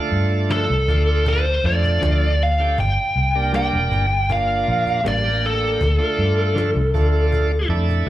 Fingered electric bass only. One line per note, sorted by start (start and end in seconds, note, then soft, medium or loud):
0.12 0.65 G2 medium
0.70 0.87 C2 medium
0.88 1.60 D2 medium
1.64 1.99 F2 medium
2.02 2.74 D2 medium
2.78 2.96 G1 medium
3.16 3.69 C2 medium
3.73 3.90 E1 medium
3.92 4.63 G1 medium
4.68 5.03 A#1 medium
5.06 5.77 A1 medium
5.81 5.99 D2 medium
6.18 6.72 G2 medium
6.75 6.93 C2 medium
6.95 7.66 D2 medium
7.69 8.05 F2 medium